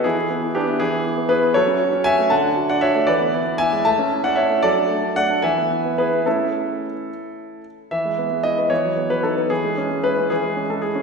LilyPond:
<<
  \new Staff \with { instrumentName = "Grand piano" } { \time 6/8 \key a \major \tempo 4. = 76 <e' gis'>4 <d' g'>8 <e' gis'>4 <gis' b'>8 | <a' cis''>4 <e'' gis''>8 <fis'' a''>8. <d'' fis''>16 <cis'' e''>8 | <b' d''>4 <e'' gis''>8 <e'' a''>8. <d'' fis''>16 <cis'' e''>8 | <a' d''>4 <d'' fis''>8 <e'' gis''>4 <gis' b'>8 |
<e' a'>2~ <e' a'>8 r8 | \key e \major e''4 dis''8 cis''8. b'16 a'8 | gis'4 b'8 gis'8. a'16 gis'8 | }
  \new Staff \with { instrumentName = "Grand piano" } { \time 6/8 \key a \major e16 e'16 b16 e'16 b16 e'16 e16 b16 e'16 b16 e'16 b16 | fis16 cis'16 fis'16 cis'16 fis'16 a16 d16 d'16 fis'16 d'16 fis'16 a16 | e16 b16 e'16 b16 e'16 gis16 a16 cis'16 e'16 cis'16 e'16 a16 | fis16 d'16 a16 d'16 a16 d'16 e16 b16 e'16 b16 e'16 b16 |
<a cis'>4. r4. | \key e \major e16 gis16 b16 gis16 e'16 b16 e16 fis16 b16 fis16 dis'16 b16 | e16 gis16 cis'16 gis16 e'16 cis'16 e16 gis16 cis'16 gis16 e'16 cis'16 | }
>>